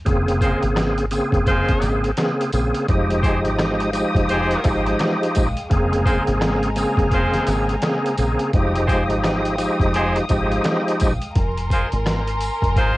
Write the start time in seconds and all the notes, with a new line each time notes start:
0.05 F1 C#3 A#3 C4 G#4, kick, closed hi-hat
0.28 closed hi-hat
0.41 G#3 F4 C5, kick, closed hi-hat, tambourine
0.62 G#1, closed hi-hat
0.76 cross-stick, snare, closed hi-hat
0.98 closed hi-hat
1.11 C#3 A#3 C4 G#4, closed hi-hat, tambourine
1.32 F1, kick, closed hi-hat
1.46 G#3 F4 C5, kick, closed hi-hat
1.69 kick, snare, closed hi-hat
1.82 G#1, closed hi-hat, tambourine
2.04 closed hi-hat
2.17 C#3 A#3 C4 G#4, cross-stick, snare, closed hi-hat
2.41 closed hi-hat
2.53 A#1 C#3 A#3 C4 G#4, closed hi-hat, tambourine
2.74 closed hi-hat
2.88 F1 F3 G#3 D#4 G4 F5 G5 D#6, kick, closed hi-hat
3.10 closed hi-hat
3.22 F3 G#3 D#4 G4 C5, kick, closed hi-hat, tambourine
3.45 G#1, closed hi-hat
3.58 cross-stick, snare, closed hi-hat
3.80 closed hi-hat
3.93 F3 G#3 D#4 G4, closed hi-hat, tambourine
4.15 F1, kick, closed hi-hat
4.29 G#3 G4 C5, closed hi-hat
4.51 closed hi-hat
4.64 G#1 F3 G#3 D#4 G4, kick, closed hi-hat, tambourine
4.87 closed hi-hat
4.99 cross-stick, snare, closed hi-hat
5.23 closed hi-hat
5.35 A#1, kick, closed hi-hat, tambourine
5.57 closed hi-hat
5.70 F1 C#3 A#3 C4 G#4 G#5 A#5, kick, closed hi-hat
5.93 closed hi-hat
6.05 G#3 F4 C5, kick, closed hi-hat, tambourine
6.27 G#1, closed hi-hat
6.41 cross-stick, snare, closed hi-hat
6.63 closed hi-hat
6.76 C#3 A#3 C4 G#4, closed hi-hat, tambourine
6.97 F1, kick, closed hi-hat
7.11 G#3 F4 C5, kick, closed hi-hat
7.34 snare, closed hi-hat
7.47 G#1, closed hi-hat, tambourine
7.69 closed hi-hat
7.82 C#3 A#3 C4 G#4, cross-stick, snare, closed hi-hat
8.06 closed hi-hat
8.18 A#1 C#3 A#3 C4 G#4, closed hi-hat, tambourine
8.39 closed hi-hat
8.53 F1 F3 G#3 D#4 G4 F5 G5 D#6, kick, closed hi-hat
8.75 closed hi-hat
8.87 F3 G#3 D#4 G4 C5, kick, closed hi-hat, tambourine
9.10 G#1, closed hi-hat
9.23 cross-stick, snare, closed hi-hat
9.45 closed hi-hat
9.58 F3 G#3 D#4 G4, closed hi-hat, tambourine
9.80 F1, kick, closed hi-hat
9.94 G#3 G4 C5, closed hi-hat
10.16 closed hi-hat
10.29 G#1 F3 G#3 D#4 G4, kick, closed hi-hat, tambourine
10.52 closed hi-hat
10.64 cross-stick, snare, closed hi-hat
10.88 closed hi-hat
11.00 A#1, kick, closed hi-hat, tambourine
11.22 closed hi-hat
11.36 F1 A#4 G#5 A#5 C6, kick, closed hi-hat
11.58 closed hi-hat
11.70 G#3 F4 C5, kick, closed hi-hat, tambourine
11.92 G#1, closed hi-hat
12.06 cross-stick, snare, closed hi-hat
12.27 closed hi-hat
12.41 closed hi-hat, tambourine
12.62 F1, kick, closed hi-hat
12.76 G#1 G#3 F4 C5, kick, closed hi-hat